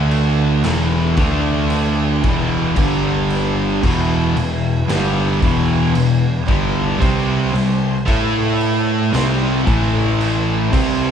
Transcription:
0.00 0.60 D2 loud
0.00 0.62 D3 medium
0.00 0.63 A3 loud
0.00 0.62 D4 medium
0.00 0.63 D4 loud
0.00 0.63 A4 medium
0.00 0.62 A5 medium
0.11 crash medium
0.63 1.14 E1 loud
0.63 1.16 E2 loud
0.63 1.16 B2 loud
0.63 1.17 E3 loud
0.63 1.17 E4 medium
0.63 1.16 B4 medium
0.63 1.17 G5 medium
0.63 snare loud
0.63 crash medium
1.16 2.20 D2 medium
1.16 2.22 D3 medium
1.16 2.23 A3 medium
1.16 2.23 D4 medium
1.16 2.22 A4 medium
1.16 2.22 A5 medium
1.16 kick loud
1.16 crash medium
1.70 crash medium
2.23 2.73 E1 loud
2.23 2.75 E2 medium
2.23 2.75 B2 medium
2.23 2.76 E3 medium
2.23 2.76 E4 medium
2.23 2.76 B4 medium
2.23 6.98 G5 medium
2.23 kick loud
2.23 crash medium
2.76 3.79 G1 loud
2.76 3.81 G2 medium
2.76 3.81 D3 loud
2.76 3.82 G3 loud
2.76 3.82 D4 medium
2.76 3.83 G4 medium
2.76 kick loud
2.76 crash medium
3.30 snare soft
3.30 crash medium
3.82 4.33 E1 medium
3.82 4.34 E2 medium
3.82 4.34 B2 medium
3.82 4.35 E3 loud
3.82 6.98 E4 medium
3.82 6.98 B4 medium
3.82 kick loud
3.82 crash medium
4.35 4.86 E1 medium
4.35 4.78 E2 medium
4.35 4.78 B2 medium
4.35 crash medium
4.88 5.39 G1 medium
4.88 5.40 G2 loud
4.88 5.41 D3 loud
4.88 5.41 G3 loud
4.88 snare loud
4.88 crash medium
5.41 5.92 E1 medium
5.41 5.92 E2 medium
5.41 5.93 B2 loud
5.41 5.94 E3 loud
5.41 kick loud
5.41 crash medium
5.94 6.45 E1 medium
5.94 6.37 E2 medium
5.94 6.37 B2 medium
5.94 crash medium
6.47 6.98 G1 loud
6.47 6.99 G2 medium
6.47 7.00 D3 medium
6.47 6.99 G3 medium
6.47 kick loud
6.47 crash medium
7.00 7.51 C2 loud
7.00 7.52 C3 loud
7.00 7.52 G3 loud
7.00 7.53 C4 loud
7.00 8.07 G4 medium
7.00 8.07 C5 medium
7.00 8.07 C6 medium
7.00 kick loud
7.00 crash medium
7.53 8.03 C2 medium
7.53 7.97 C3 medium
7.53 7.97 G3 medium
7.53 snare soft
7.53 crash medium
8.08 9.10 A2 loud
8.08 9.12 A3 medium
8.08 9.12 E4 medium
8.08 9.13 E4 medium
8.08 9.13 A4 loud
8.08 9.13 A4 medium
8.08 9.13 A5 medium
8.08 kick loud
8.08 crash medium
8.61 crash medium
9.13 9.62 C2 loud
9.13 9.65 C3 loud
9.13 9.66 G3 loud
9.13 9.66 C4 loud
9.13 9.67 G4 medium
9.13 9.66 C5 medium
9.13 9.67 C6 medium
9.13 snare loud
9.13 crash medium
9.66 10.69 A1 medium
9.66 10.70 A2 medium
9.66 10.71 E3 medium
9.66 10.71 A3 loud
9.66 10.71 E4 medium
9.66 10.72 A4 medium
9.66 10.71 A5 medium
9.66 kick loud
9.66 crash medium
10.21 crash medium
10.73 11.11 C2 loud
10.73 11.11 C3 medium
10.73 11.11 G3 medium
10.73 11.11 C4 loud
10.73 11.11 G4 medium
10.73 11.11 C5 medium
10.73 11.11 C6 medium
10.73 kick loud
10.73 crash loud

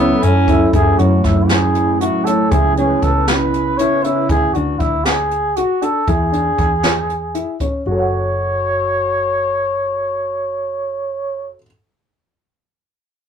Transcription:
0.00 0.13 C#2 medium
0.00 0.70 F#3 medium
0.00 0.25 B3 medium
0.00 0.35 C#4 medium
0.00 0.70 C#4 medium
0.00 0.31 E4 medium
0.00 0.71 E4 medium
0.00 0.71 A4 medium
0.23 0.64 F#2 medium
0.23 0.74 C#4 medium
0.23 closed hi-hat medium
0.48 0.72 E4 medium
0.48 0.67 E4 medium
0.48 kick medium
0.48 closed hi-hat medium
0.73 0.94 F#2 medium
0.73 2.48 F#3 medium
0.73 2.49 A3 medium
0.73 2.48 C#4 medium
0.73 0.92 E4 medium
0.73 2.49 E4 medium
0.73 1.00 G#4 medium
0.73 kick loud
0.73 closed hi-hat medium
0.99 1.19 F#2 medium
0.99 1.37 C#4 medium
0.99 1.26 F#4 medium
0.99 closed hi-hat medium
1.24 2.07 F#2 medium
1.24 1.51 E4 medium
1.24 kick medium
1.24 snare soft
1.24 closed hi-hat medium
1.49 2.00 G#4 medium
1.49 snare medium
1.49 closed hi-hat medium
1.75 closed hi-hat medium
2.01 2.20 E4 medium
2.01 2.26 F#4 medium
2.01 closed hi-hat medium
2.24 2.46 C#4 medium
2.24 2.52 A4 medium
2.24 closed hi-hat medium
2.50 2.93 C#2 medium
2.50 4.26 C#3 medium
2.50 4.26 C#4 medium
2.50 4.27 E4 soft
2.50 2.71 E4 medium
2.50 2.76 G#4 medium
2.50 4.27 B4 medium
2.50 kick medium
2.50 closed hi-hat medium
2.76 3.15 C#4 medium
2.76 3.04 G#4 medium
2.76 closed hi-hat medium
3.02 3.85 C#2 medium
3.02 3.30 A4 medium
3.02 kick medium
3.02 closed hi-hat medium
3.28 3.79 B4 medium
3.28 snare medium
3.28 closed hi-hat medium
3.54 closed hi-hat soft
3.78 3.98 E4 medium
3.78 4.05 C#5 medium
3.78 closed hi-hat medium
4.04 4.24 C#4 medium
4.04 4.29 E4 medium
4.04 closed hi-hat medium
4.29 4.50 D2 medium
4.29 4.49 E4 medium
4.29 4.55 G#4 loud
4.29 kick medium
4.29 closed hi-hat medium
4.54 4.76 D2 medium
4.54 4.93 D4 medium
4.54 4.81 F#4 medium
4.54 closed hi-hat soft
4.79 5.63 D2 medium
4.79 5.06 E4 medium
4.79 kick medium
4.79 closed hi-hat soft
5.04 5.58 G#4 medium
5.04 snare medium
5.04 closed hi-hat medium
5.31 closed hi-hat soft
5.56 5.84 F#4 medium
5.56 5.76 F#4 medium
5.56 closed hi-hat medium
5.82 6.01 D4 medium
5.82 6.10 A4 medium
5.82 closed hi-hat medium
6.07 6.49 E2 medium
6.07 6.27 E4 medium
6.07 7.61 G#4 medium
6.07 kick medium
6.07 closed hi-hat medium
6.32 6.70 D4 medium
6.32 closed hi-hat soft
6.58 7.42 E2 medium
6.58 kick medium
6.58 closed hi-hat medium
6.83 snare medium
6.83 closed hi-hat medium
7.10 closed hi-hat soft
7.35 7.54 E4 medium
7.35 closed hi-hat medium
7.60 7.80 C#4 medium
7.60 kick medium
7.60 closed hi-hat medium
7.86 11.53 F#1 medium
7.86 11.53 F#4 medium
7.86 11.53 C#5 medium
7.91 11.58 A4 soft
7.91 11.62 C#5 medium
7.99 11.66 F#5 soft

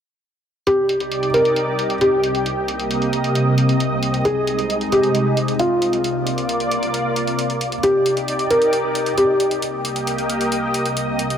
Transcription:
0.67 9.58 C2 medium
0.67 11.38 C3 medium
0.67 2.44 D#4 medium
0.67 1.25 G4 medium
0.67 4.22 G4 medium
0.67 2.44 D5 medium
0.67 closed hi-hat medium
0.89 closed hi-hat medium
1.00 closed hi-hat soft
1.12 closed hi-hat medium
1.23 closed hi-hat soft
1.34 1.92 A#4 medium
1.34 closed hi-hat medium
1.45 closed hi-hat soft
1.56 closed hi-hat medium
1.79 closed hi-hat medium
1.90 closed hi-hat soft
2.01 4.16 G4 medium
2.01 closed hi-hat medium
2.24 closed hi-hat medium
2.35 closed hi-hat soft
2.46 4.23 A#3 medium
2.46 6.01 D#5 medium
2.46 closed hi-hat medium
2.68 closed hi-hat medium
2.80 closed hi-hat soft
2.91 closed hi-hat medium
3.02 closed hi-hat soft
3.13 closed hi-hat medium
3.24 closed hi-hat soft
3.35 closed hi-hat medium
3.58 closed hi-hat medium
3.69 closed hi-hat soft
3.80 closed hi-hat medium
4.03 closed hi-hat medium
4.14 closed hi-hat soft
4.25 6.02 G#3 medium
4.25 6.02 D#4 medium
4.25 4.83 G#4 medium
4.25 closed hi-hat medium
4.47 closed hi-hat medium
4.59 closed hi-hat soft
4.70 closed hi-hat medium
4.81 closed hi-hat soft
4.92 5.50 G4 medium
4.92 closed hi-hat medium
5.03 closed hi-hat soft
5.15 closed hi-hat medium
5.37 closed hi-hat medium
5.48 closed hi-hat soft
5.59 7.74 F4 medium
5.59 closed hi-hat medium
5.82 closed hi-hat medium
5.93 closed hi-hat soft
6.04 7.82 A#3 medium
6.04 7.82 F4 medium
6.04 7.82 D5 medium
6.04 closed hi-hat medium
6.27 closed hi-hat medium
6.38 closed hi-hat soft
6.49 closed hi-hat medium
6.60 closed hi-hat soft
6.71 closed hi-hat medium
6.83 closed hi-hat soft
6.94 closed hi-hat medium
7.16 closed hi-hat medium
7.27 closed hi-hat soft
7.39 closed hi-hat medium
7.50 closed hi-hat soft
7.61 closed hi-hat medium
7.72 closed hi-hat soft
7.83 9.61 D#4 medium
7.83 9.61 G4 medium
7.83 8.42 G4 medium
7.83 9.61 D5 medium
7.83 closed hi-hat medium
8.06 closed hi-hat medium
8.17 closed hi-hat soft
8.28 closed hi-hat medium
8.39 closed hi-hat soft
8.51 9.09 A#4 medium
8.51 closed hi-hat medium
8.62 closed hi-hat soft
8.73 closed hi-hat medium
8.95 closed hi-hat medium
9.06 closed hi-hat soft
9.18 11.33 G4 medium
9.18 closed hi-hat medium
9.40 closed hi-hat medium
9.51 closed hi-hat soft
9.62 11.38 C2 medium
9.62 11.38 A#3 medium
9.62 11.38 G4 medium
9.62 11.38 D#5 medium
9.62 closed hi-hat medium
9.85 closed hi-hat medium
9.96 closed hi-hat soft
10.07 closed hi-hat medium
10.18 closed hi-hat soft
10.30 closed hi-hat medium
10.41 closed hi-hat soft
10.52 closed hi-hat medium
10.74 closed hi-hat medium
10.86 closed hi-hat soft
10.97 closed hi-hat medium
11.19 closed hi-hat medium
11.30 closed hi-hat soft

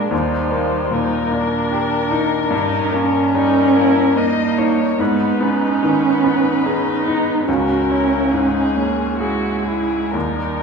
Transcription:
0.00 0.15 F3 soft
0.00 0.10 G#3 medium
0.00 0.14 A#3 soft
0.00 0.11 D4 soft
0.00 0.12 D4 medium
0.00 0.14 G#4 soft
0.00 0.11 A#4 medium
0.11 2.48 D#2 medium
0.11 1.29 G3 medium
0.11 0.90 D#4 soft
0.11 0.95 C5 medium
0.52 1.16 A#3 soft
0.91 1.56 A#2 soft
0.91 1.33 D#4 medium
0.91 3.34 A#4 medium
1.31 1.96 A#3 soft
1.31 2.54 D4 medium
1.71 2.36 G4 soft
2.11 2.51 D#4 soft
2.50 4.95 G2 medium
2.50 3.36 C#4 medium
2.50 2.95 D#4 medium
2.92 3.59 A#3 soft
2.92 4.18 C#4 medium
3.34 4.00 G3 soft
3.34 3.76 D#4 medium
3.34 4.18 A#4 medium
3.76 4.42 A#3 soft
3.76 4.16 E4 medium
4.16 4.99 A#3 medium
4.16 4.98 D#4 medium
4.16 4.83 A#4 soft
4.16 4.60 D#5 medium
4.58 4.99 D#4 soft
4.58 5.02 C#5 medium
4.99 7.44 G#2 medium
4.99 5.43 B3 medium
4.99 6.67 D#4 medium
4.99 7.49 B4 medium
5.40 6.07 B3 soft
5.40 6.65 C#4 medium
5.83 6.49 D#3 soft
6.24 6.90 B3 soft
6.64 7.07 C#4 medium
6.64 7.46 D#4 medium
6.64 7.31 G#4 soft
7.06 7.48 B3 medium
7.06 7.48 D#4 soft
7.47 10.10 C#2 soft
7.47 8.77 C#4 medium
7.47 7.92 F#4 medium
7.47 8.33 A#4 soft
7.91 8.59 C#4 soft
7.91 8.35 E4 soft
8.31 9.03 G#2 soft
8.31 8.78 D#4 medium
8.31 9.18 G#4 soft
8.75 9.21 A#3 medium
8.75 9.48 C#4 soft
8.75 9.21 C#4 soft
9.18 10.15 G#3 medium
9.18 10.16 E4 soft
9.18 9.66 F#4 soft
9.18 9.95 G#4 soft
9.64 10.14 E4 soft
9.64 10.13 G#4 soft
10.11 10.63 D#2 soft
10.11 10.63 G3 medium
10.11 10.63 D#4 soft
10.11 10.63 A#4 soft

